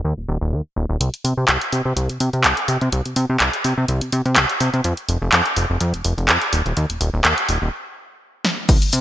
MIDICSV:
0, 0, Header, 1, 3, 480
1, 0, Start_track
1, 0, Key_signature, -3, "minor"
1, 0, Tempo, 480000
1, 1008, Time_signature, 4, 2, 24, 8
1, 9008, End_track
2, 0, Start_track
2, 0, Title_t, "Analog synth bass"
2, 0, Program_c, 0, 38
2, 45, Note_on_c, 0, 39, 85
2, 136, Note_off_c, 0, 39, 0
2, 175, Note_on_c, 0, 27, 42
2, 264, Note_off_c, 0, 27, 0
2, 285, Note_on_c, 0, 27, 90
2, 376, Note_off_c, 0, 27, 0
2, 414, Note_on_c, 0, 27, 82
2, 525, Note_on_c, 0, 39, 87
2, 540, Note_off_c, 0, 27, 0
2, 616, Note_off_c, 0, 39, 0
2, 764, Note_on_c, 0, 27, 87
2, 855, Note_off_c, 0, 27, 0
2, 894, Note_on_c, 0, 27, 89
2, 971, Note_off_c, 0, 27, 0
2, 1004, Note_on_c, 0, 36, 99
2, 1096, Note_off_c, 0, 36, 0
2, 1244, Note_on_c, 0, 48, 95
2, 1336, Note_off_c, 0, 48, 0
2, 1374, Note_on_c, 0, 48, 98
2, 1452, Note_off_c, 0, 48, 0
2, 1485, Note_on_c, 0, 36, 87
2, 1576, Note_off_c, 0, 36, 0
2, 1726, Note_on_c, 0, 48, 83
2, 1816, Note_off_c, 0, 48, 0
2, 1854, Note_on_c, 0, 48, 105
2, 1932, Note_off_c, 0, 48, 0
2, 1964, Note_on_c, 0, 36, 96
2, 2088, Note_off_c, 0, 36, 0
2, 2094, Note_on_c, 0, 48, 43
2, 2184, Note_off_c, 0, 48, 0
2, 2204, Note_on_c, 0, 48, 89
2, 2296, Note_off_c, 0, 48, 0
2, 2334, Note_on_c, 0, 48, 82
2, 2443, Note_on_c, 0, 36, 81
2, 2458, Note_off_c, 0, 48, 0
2, 2535, Note_off_c, 0, 36, 0
2, 2683, Note_on_c, 0, 48, 94
2, 2775, Note_off_c, 0, 48, 0
2, 2815, Note_on_c, 0, 48, 97
2, 2892, Note_off_c, 0, 48, 0
2, 2924, Note_on_c, 0, 36, 97
2, 3016, Note_off_c, 0, 36, 0
2, 3055, Note_on_c, 0, 48, 44
2, 3144, Note_off_c, 0, 48, 0
2, 3162, Note_on_c, 0, 48, 100
2, 3255, Note_off_c, 0, 48, 0
2, 3295, Note_on_c, 0, 48, 102
2, 3372, Note_off_c, 0, 48, 0
2, 3404, Note_on_c, 0, 36, 88
2, 3496, Note_off_c, 0, 36, 0
2, 3646, Note_on_c, 0, 48, 85
2, 3737, Note_off_c, 0, 48, 0
2, 3776, Note_on_c, 0, 48, 101
2, 3852, Note_off_c, 0, 48, 0
2, 3885, Note_on_c, 0, 36, 97
2, 4010, Note_off_c, 0, 36, 0
2, 4016, Note_on_c, 0, 48, 44
2, 4105, Note_off_c, 0, 48, 0
2, 4126, Note_on_c, 0, 48, 91
2, 4217, Note_off_c, 0, 48, 0
2, 4255, Note_on_c, 0, 48, 84
2, 4365, Note_on_c, 0, 36, 82
2, 4380, Note_off_c, 0, 48, 0
2, 4456, Note_off_c, 0, 36, 0
2, 4605, Note_on_c, 0, 48, 95
2, 4696, Note_off_c, 0, 48, 0
2, 4736, Note_on_c, 0, 48, 95
2, 4812, Note_off_c, 0, 48, 0
2, 4847, Note_on_c, 0, 41, 99
2, 4937, Note_off_c, 0, 41, 0
2, 5086, Note_on_c, 0, 29, 100
2, 5177, Note_off_c, 0, 29, 0
2, 5217, Note_on_c, 0, 29, 104
2, 5293, Note_off_c, 0, 29, 0
2, 5328, Note_on_c, 0, 41, 90
2, 5417, Note_off_c, 0, 41, 0
2, 5567, Note_on_c, 0, 29, 85
2, 5657, Note_off_c, 0, 29, 0
2, 5699, Note_on_c, 0, 29, 106
2, 5774, Note_off_c, 0, 29, 0
2, 5807, Note_on_c, 0, 41, 99
2, 5932, Note_off_c, 0, 41, 0
2, 5938, Note_on_c, 0, 29, 44
2, 6026, Note_off_c, 0, 29, 0
2, 6048, Note_on_c, 0, 29, 88
2, 6138, Note_off_c, 0, 29, 0
2, 6177, Note_on_c, 0, 29, 83
2, 6288, Note_on_c, 0, 41, 82
2, 6303, Note_off_c, 0, 29, 0
2, 6378, Note_off_c, 0, 41, 0
2, 6529, Note_on_c, 0, 27, 97
2, 6618, Note_off_c, 0, 27, 0
2, 6657, Note_on_c, 0, 27, 98
2, 6733, Note_off_c, 0, 27, 0
2, 6768, Note_on_c, 0, 39, 98
2, 6858, Note_off_c, 0, 39, 0
2, 6898, Note_on_c, 0, 27, 43
2, 6985, Note_off_c, 0, 27, 0
2, 7007, Note_on_c, 0, 27, 99
2, 7097, Note_off_c, 0, 27, 0
2, 7136, Note_on_c, 0, 27, 101
2, 7212, Note_off_c, 0, 27, 0
2, 7247, Note_on_c, 0, 39, 90
2, 7337, Note_off_c, 0, 39, 0
2, 7489, Note_on_c, 0, 27, 86
2, 7578, Note_off_c, 0, 27, 0
2, 7619, Note_on_c, 0, 27, 103
2, 7694, Note_off_c, 0, 27, 0
2, 8690, Note_on_c, 0, 36, 99
2, 8778, Note_off_c, 0, 36, 0
2, 8930, Note_on_c, 0, 48, 99
2, 9008, Note_off_c, 0, 48, 0
2, 9008, End_track
3, 0, Start_track
3, 0, Title_t, "Drums"
3, 1008, Note_on_c, 9, 42, 79
3, 1108, Note_off_c, 9, 42, 0
3, 1137, Note_on_c, 9, 42, 54
3, 1237, Note_off_c, 9, 42, 0
3, 1247, Note_on_c, 9, 46, 105
3, 1347, Note_off_c, 9, 46, 0
3, 1484, Note_on_c, 9, 39, 122
3, 1485, Note_on_c, 9, 42, 82
3, 1584, Note_off_c, 9, 39, 0
3, 1585, Note_off_c, 9, 42, 0
3, 1615, Note_on_c, 9, 42, 53
3, 1715, Note_off_c, 9, 42, 0
3, 1725, Note_on_c, 9, 46, 90
3, 1825, Note_off_c, 9, 46, 0
3, 1966, Note_on_c, 9, 42, 82
3, 2066, Note_off_c, 9, 42, 0
3, 2095, Note_on_c, 9, 42, 54
3, 2195, Note_off_c, 9, 42, 0
3, 2204, Note_on_c, 9, 46, 105
3, 2304, Note_off_c, 9, 46, 0
3, 2333, Note_on_c, 9, 42, 36
3, 2433, Note_off_c, 9, 42, 0
3, 2442, Note_on_c, 9, 39, 121
3, 2442, Note_on_c, 9, 42, 84
3, 2542, Note_off_c, 9, 39, 0
3, 2542, Note_off_c, 9, 42, 0
3, 2572, Note_on_c, 9, 42, 56
3, 2672, Note_off_c, 9, 42, 0
3, 2682, Note_on_c, 9, 46, 92
3, 2782, Note_off_c, 9, 46, 0
3, 2814, Note_on_c, 9, 42, 39
3, 2914, Note_off_c, 9, 42, 0
3, 2925, Note_on_c, 9, 42, 76
3, 3025, Note_off_c, 9, 42, 0
3, 3055, Note_on_c, 9, 42, 53
3, 3155, Note_off_c, 9, 42, 0
3, 3162, Note_on_c, 9, 46, 109
3, 3262, Note_off_c, 9, 46, 0
3, 3401, Note_on_c, 9, 39, 127
3, 3402, Note_on_c, 9, 42, 80
3, 3501, Note_off_c, 9, 39, 0
3, 3502, Note_off_c, 9, 42, 0
3, 3534, Note_on_c, 9, 42, 53
3, 3634, Note_off_c, 9, 42, 0
3, 3644, Note_on_c, 9, 46, 94
3, 3744, Note_off_c, 9, 46, 0
3, 3884, Note_on_c, 9, 42, 82
3, 3984, Note_off_c, 9, 42, 0
3, 4014, Note_on_c, 9, 42, 53
3, 4114, Note_off_c, 9, 42, 0
3, 4124, Note_on_c, 9, 46, 112
3, 4224, Note_off_c, 9, 46, 0
3, 4256, Note_on_c, 9, 42, 36
3, 4356, Note_off_c, 9, 42, 0
3, 4362, Note_on_c, 9, 39, 127
3, 4363, Note_on_c, 9, 42, 78
3, 4462, Note_off_c, 9, 39, 0
3, 4463, Note_off_c, 9, 42, 0
3, 4495, Note_on_c, 9, 42, 54
3, 4595, Note_off_c, 9, 42, 0
3, 4604, Note_on_c, 9, 46, 95
3, 4704, Note_off_c, 9, 46, 0
3, 4736, Note_on_c, 9, 42, 36
3, 4836, Note_off_c, 9, 42, 0
3, 4843, Note_on_c, 9, 42, 78
3, 4943, Note_off_c, 9, 42, 0
3, 4973, Note_on_c, 9, 42, 51
3, 5073, Note_off_c, 9, 42, 0
3, 5086, Note_on_c, 9, 46, 113
3, 5186, Note_off_c, 9, 46, 0
3, 5324, Note_on_c, 9, 39, 122
3, 5324, Note_on_c, 9, 42, 78
3, 5424, Note_off_c, 9, 39, 0
3, 5424, Note_off_c, 9, 42, 0
3, 5456, Note_on_c, 9, 42, 51
3, 5556, Note_off_c, 9, 42, 0
3, 5565, Note_on_c, 9, 46, 97
3, 5665, Note_off_c, 9, 46, 0
3, 5805, Note_on_c, 9, 42, 76
3, 5905, Note_off_c, 9, 42, 0
3, 5938, Note_on_c, 9, 42, 54
3, 6038, Note_off_c, 9, 42, 0
3, 6045, Note_on_c, 9, 46, 112
3, 6145, Note_off_c, 9, 46, 0
3, 6180, Note_on_c, 9, 42, 35
3, 6280, Note_off_c, 9, 42, 0
3, 6286, Note_on_c, 9, 39, 125
3, 6287, Note_on_c, 9, 42, 78
3, 6386, Note_off_c, 9, 39, 0
3, 6387, Note_off_c, 9, 42, 0
3, 6416, Note_on_c, 9, 42, 53
3, 6516, Note_off_c, 9, 42, 0
3, 6527, Note_on_c, 9, 46, 100
3, 6627, Note_off_c, 9, 46, 0
3, 6659, Note_on_c, 9, 42, 37
3, 6759, Note_off_c, 9, 42, 0
3, 6768, Note_on_c, 9, 42, 76
3, 6868, Note_off_c, 9, 42, 0
3, 6898, Note_on_c, 9, 42, 53
3, 6998, Note_off_c, 9, 42, 0
3, 7008, Note_on_c, 9, 46, 109
3, 7108, Note_off_c, 9, 46, 0
3, 7247, Note_on_c, 9, 39, 119
3, 7247, Note_on_c, 9, 42, 77
3, 7347, Note_off_c, 9, 39, 0
3, 7347, Note_off_c, 9, 42, 0
3, 7378, Note_on_c, 9, 42, 50
3, 7478, Note_off_c, 9, 42, 0
3, 7486, Note_on_c, 9, 46, 99
3, 7586, Note_off_c, 9, 46, 0
3, 8446, Note_on_c, 9, 38, 97
3, 8546, Note_off_c, 9, 38, 0
3, 8688, Note_on_c, 9, 36, 116
3, 8688, Note_on_c, 9, 42, 84
3, 8688, Note_on_c, 9, 49, 105
3, 8689, Note_on_c, 9, 82, 45
3, 8788, Note_off_c, 9, 36, 0
3, 8788, Note_off_c, 9, 42, 0
3, 8788, Note_off_c, 9, 49, 0
3, 8789, Note_off_c, 9, 82, 0
3, 8820, Note_on_c, 9, 42, 55
3, 8821, Note_on_c, 9, 82, 22
3, 8920, Note_off_c, 9, 42, 0
3, 8921, Note_off_c, 9, 82, 0
3, 8927, Note_on_c, 9, 46, 108
3, 8928, Note_on_c, 9, 82, 80
3, 9008, Note_off_c, 9, 46, 0
3, 9008, Note_off_c, 9, 82, 0
3, 9008, End_track
0, 0, End_of_file